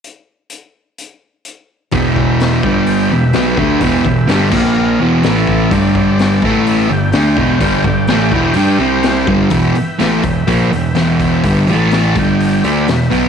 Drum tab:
CC |--------|--------|---x----|--------|
HH |x-x-x-x-|o-o-o-o-|o-o---o-|o-o-o-o-|
SD |--------|--o---o-|--oo--o-|--oo--o-|
BD |--------|oo-o---o|oo-o---o|oo-o---o|

CC |--------|--------|--------|
HH |o-o-o-o-|oooooooo|oooooooo|
SD |--o---o-|--o---o-|--o---o-|
BD |oo-o---o|o--oo--o|o--o---o|